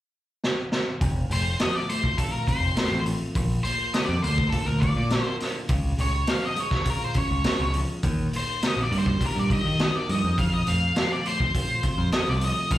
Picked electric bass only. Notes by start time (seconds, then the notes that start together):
1.01 F1
1.30 F1
2.61 F1
2.92 A1
3.35 A#1
4.09 F2
4.24 D2
4.67 D2
4.96 A#2
5.69 C#2
5.99 C#2
7.31 C#2
7.60 C#2
8.04 D#2
8.77 A#1
8.91 G2
9.36 G2
9.65 D#3
10.09 G2
10.24 F2
10.38 F2
10.68 F2
11.98 F2
12.28 C2
12.71 A#1